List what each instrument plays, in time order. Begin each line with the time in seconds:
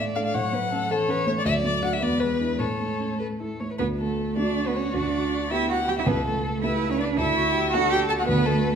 Already playing: grand piano A2 A3, cello A3, violin D5
0.16 grand piano D4 A4, violin F5
0.26 violin F5
0.34 grand piano A2, cello F#3, violin C#5 F#5
0.53 grand piano A3, violin B4
0.72 grand piano C#4, violin A4
0.91 cello E3, grand piano A4, violin A4 C#5
1.08 grand piano C#4, violin B4
1.27 grand piano A3, violin C#5
1.39 violin D5
1.45 grand piano D2, cello F#3, violin D5 E5
1.64 grand piano A3, violin D5
1.82 grand piano D4 F#4, violin F#5
1.93 violin E5
2.01 grand piano E2, cello G#3, violin B4 D5
2.21 grand piano G#3, violin B4
2.41 grand piano D4 E4
2.58 grand piano A2, cello A3, violin A4 C#5
2.80 grand piano A3
3.00 grand piano C#4
3.18 grand piano A4, violin B4
3.40 grand piano E4, violin A4
3.60 grand piano A3, violin C#5
3.71 violin B4
3.78 grand piano D2 D3, cello B3, violin B4
3.99 cello A3, violin A4
4.36 grand piano A3 D4 F#4, cello D4, violin F#4 D5
4.67 cello B3, violin B4
4.75 cello C#4, violin C#5
4.93 grand piano D2 D3, cello D4, violin D5
5.51 grand piano B3 E4 G4, cello E4, violin G4 E5
5.69 cello F#4, violin F#5
5.88 cello G4, violin G5
5.98 cello E4, violin E5
6.05 grand piano C#2 C#3, cello B3, violin A4 B4
6.25 cello A3, violin A4
6.62 grand piano A3 E4 G4, cello E4, violin B4 E5
6.90 cello C#4, violin C#5
6.97 cello D4, violin D5
7.16 grand piano D2 D3, cello E4, violin A4 E5
7.37 violin F#4
7.54 violin G4
7.71 grand piano A3 D4 F#4, cello F#4, violin A4 F#5
7.90 cello G4, violin G5
8.08 cello A4, violin A5
8.19 cello F#4, violin F#5
8.26 grand piano D2 D3, cello B3, violin B4
8.45 cello A3, violin A4